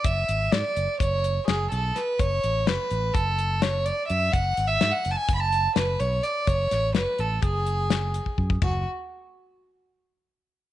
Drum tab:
RD |------------------|------------------|------------------|------------------|
HH |x-x-x-x-x-x-x-x-x-|x-x-x-x-x-x-x-x-x-|x-x-x-x-x-x-x-x-x-|x-x-x-x-x-x-x-x---|
SD |----o-------o---o-|----o-------o-----|----o-------o-----|--o-o-------o-----|
FT |------------------|------------------|------------------|------------------|
BD |o-------o---------|o-------o---------|o-------o---------|o-------o------ooo|

RD |b-----------------|
HH |------------------|
SD |------------------|
FT |o-----------------|
BD |o-----------------|